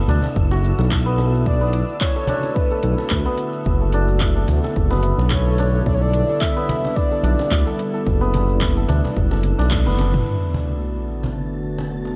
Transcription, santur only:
Already playing: B3 F#4 A4
0.09 D4
0.51 F#4
0.79 A4
1.06 B3
1.61 B3
2.16 A4
2.29 D4
2.71 A4
2.98 A4
3.26 B3
3.81 A4
3.94 D4
4.36 A4
4.64 A4
4.91 B3
5.46 A4
5.59 D4
6.02 A4
6.29 A4
6.56 B3
7.12 A4
7.24 D4
7.67 A4
7.94 A4
8.21 B3
8.77 A4
8.89 D4
9.31 A4
9.59 D4
9.86 B3

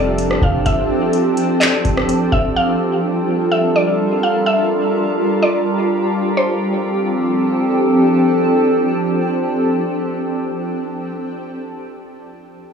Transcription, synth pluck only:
Already playing: D5
0.43 F5
0.66 E5
1.60 D5
2.32 E5
2.56 F5
3.52 E5
3.76 D5
4.23 F5
4.46 E5
5.43 D5
6.37 C5

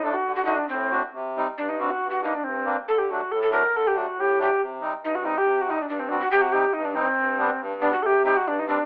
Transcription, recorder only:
0.03 D4
0.14 F#4
0.35 F#4
0.45 D#4
0.56 D4
0.69 C4
1.58 D4
1.69 D#4
1.80 D4
1.90 F#4
2.10 F#4
2.24 D#4
2.35 D4
2.44 C4
2.88 A4
2.98 G4
3.10 F#4
3.32 A4
3.42 A4
3.52 A#4
3.76 A4
3.87 G4
3.97 F#4
4.20 G4
4.42 G4
5.04 D#4
5.15 F#4
5.25 D#4
5.38 G4
5.61 F#4
5.71 D#4
5.82 D4
5.89 D4
5.99 C4
6.09 D4
6.20 F#4
6.31 G4
6.41 F#4
6.52 G4
6.73 D#4
6.85 D4
6.95 C4
7.81 D4
7.93 F#4
8.03 G4 A4
8.25 G4
8.37 F#4
8.48 D4
8.59 D#4
8.69 D4

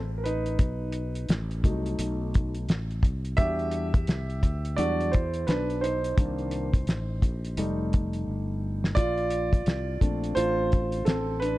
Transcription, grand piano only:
0.18 A#4
0.24 D#4 B4
1.64 F#3 A3 D#4
3.37 G3 D4 F#4 G4 E5
4.76 F#3 G3 D4 F#4 D5
5.12 E4 C5
5.47 D4 B4
5.81 D#4 C5
6.17 D#3 A#3 D4
7.57 G3 A3 D#4
8.95 F4 D5
10.01 A3 C4 D4
10.35 F4 C5
11.05 C4 A4
11.40 D4 B4

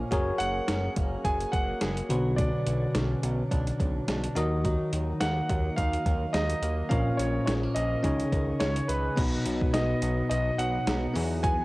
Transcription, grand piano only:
0.38 F#5
1.25 G#5
1.52 F#5
2.36 D5
5.20 F#5
5.76 F5
6.33 D#5
6.89 F5
7.17 C#5
7.46 C#5
7.75 D#5
8.60 C#5
8.88 B4
9.73 D#5
10.30 D#5
10.58 F#5
11.43 G#5

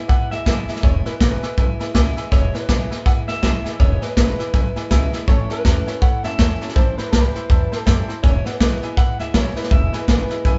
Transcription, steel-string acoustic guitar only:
0.09 E3 G#3 B3 E4
0.31 E3 G#3 B3 E4
0.45 E2 B2 E3 G#3 B3 E4
0.68 E3 G#3 B3 E4
0.83 E2 B2 E3 G#3 B3 E4
1.05 E3 G#3 B3 E4
1.20 E2 B2 E3 G#3 B3 E4
1.42 E3 G#3 B3 E4
1.57 E3 G#3 B3 E4
1.80 E3 G#3 B3 E4
1.94 E2 B2 E3 G#3 B3 E4
2.16 E3 G#3 B3 E4
2.31 E2 B2 E3 G#3 B3 E4
2.54 E3 G#3 B3 E4
2.69 E2 B2 E3 G#3 B3 E4
2.91 E3 G#3 B3 E4
3.05 E3 G#3 B3 E4
3.27 E3 G#3 B3 E4
3.43 E2 B2 E3 G#3 B3 E4
3.64 E3 G#3 B3 E4
3.79 E2 B2 E3 G#3 B3 E4
4.01 E3 G#3 B3 E4
4.17 E2 B2 E3 G#3 B3 E4
4.38 E3 G#3 B3 E4
4.53 E3 G#3 B3 E4
4.76 E3 G#3 B3 E4
4.90 E2 B2 E3 G#3 B3 E4
5.13 E3 G#3 B3 E4
5.28 A2 E3 A3 C#4 E4
5.50 A3 C#4 E4
5.64 A2 E3 A3 C#4 E4
5.86 A3 C#4 E4
6.01 E3 A3 C#4 E4
6.23 A3 C#4 E4
6.38 A2 E3 A3 C#4 E4
6.60 A3 C#4 E4
6.75 A2 E3 G3 C4 E4
6.97 G3 C4 E4
7.12 A2 E3 G3 C4 E4
7.34 G3 C4 E4
7.49 E3 G3 C4 E4
7.71 G3 C4 E4
7.86 A2 E3 G3 C4 E4
8.09 G3 C4 E4
8.24 E2 B2 E3 G#3 B3 E4
8.45 E3 G#3 B3 E4
8.60 E2 B2 E3 G#3 B3 E4
8.83 E3 G#3 B3 E4
8.98 G#3 B3
9.20 E3 G#3 B3 E4
9.34 E2 B2 E3 G#3 B3 E4
9.55 E3 G#3 B3 E4
9.71 E2 B2 E3 G#3 B3 E4
9.93 E3 G#3 B3 E4
10.07 E2 B2 E3 G#3 B3 E4
10.30 E3 G#3 B3 E4
10.44 E3 G#3 B3 E4

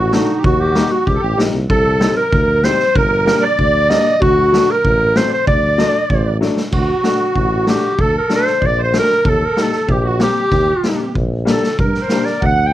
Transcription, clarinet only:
Already playing: F#4
0.14 D#4
0.45 F#4
0.61 G4
0.92 F#4
1.07 G4
1.70 A4
2.17 A#4
2.64 C5
2.96 A#4
3.44 D5
3.90 D#5
4.22 F#4
4.71 A#4
5.17 C5
5.33 C5
5.48 D5
6.74 F#4
7.70 G4
8.01 A4
8.18 A#4
8.35 C5
8.66 D5
8.84 C5
8.99 A#4
9.29 A4
9.45 A#4
9.63 A4
9.92 G4
10.09 F#4
10.24 G4
11.51 A4
11.80 A#4
12.02 C5
12.25 D5
12.46 F#5
12.67 G5

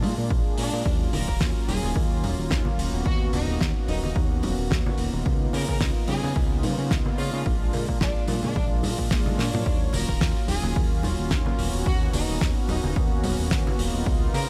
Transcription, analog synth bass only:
0.03 A#2
0.18 A#2
0.30 A#1
0.58 A#2
0.73 A#2
0.85 D#2
1.13 D#1
1.28 D#1
1.41 D#2
1.68 D#1
1.83 D#1
1.96 D#2
2.24 D#1
2.38 D#1
2.51 D#2
2.78 D#1
2.93 D#1
3.06 D#2
3.33 D#1
3.48 D#1
3.60 D#2
3.88 D#1
4.03 D#1
4.16 D#2
4.43 D#1
4.58 D#1
4.71 D#2
4.98 D#1
5.13 D#1
5.26 C#2
5.53 C#3
5.68 C#3
5.81 C#2
6.08 C#3
6.23 C#3
6.36 C#2
6.63 C#3
6.78 C#3
6.91 C#2
7.18 C#3
7.33 C#3
7.46 A#1
7.74 A#2
7.88 A#2
8.01 A#1
8.28 A#2
8.44 A#2
8.56 A#1
8.83 A#2
8.98 A#2
9.11 A#1
9.38 A#2
9.54 A#2
9.66 D#2
9.93 D#1
10.09 D#1
10.21 D#2
10.48 D#1
10.64 D#1
10.76 D#2
11.04 D#1
11.19 D#1
11.31 D#2
11.59 D#1
11.74 D#1
11.86 D#2
12.14 D#1
12.28 D#1
12.41 D#2
12.68 D#1
12.84 D#1
12.96 D#2
13.24 D#1
13.39 D#1
13.51 D#2
13.79 D#1
13.94 D#1
14.06 C#2
14.34 C#3

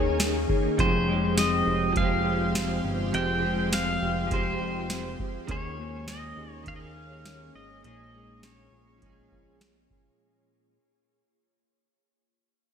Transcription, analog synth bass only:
Already playing: D#2
0.78 F1
1.67 F1
1.96 F1
2.84 G1
3.14 F1
4.02 F1
4.60 F1
5.49 D#2
6.37 D#2
6.67 D#2
7.55 G#1
7.84 A#1
8.72 A#1
9.32 A#1

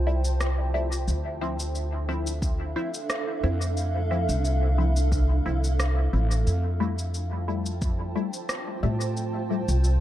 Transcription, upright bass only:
Already playing: C2
1.08 D2
3.44 F2
4.29 C2
5.46 C2
6.13 A1
6.47 F2
8.83 A2
9.68 C2

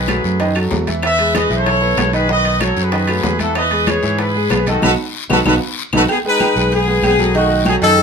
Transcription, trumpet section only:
Already playing: G#4 B4
1.04 B4 E5
1.34 B4 D#5
1.57 A4 C#5
2.15 G#4 B4
2.31 B4 D#5
2.62 A4 C#5
2.83 G#4 B4
3.41 F#4 A4
3.56 B4 D#5
3.88 G#4 C#5
4.20 G#4 B4
4.68 F#4 A4
4.84 F#4 A4 B4
5.30 F#4 A4 B4
5.47 F#4 A4 B4
5.95 F#4 A4 B4

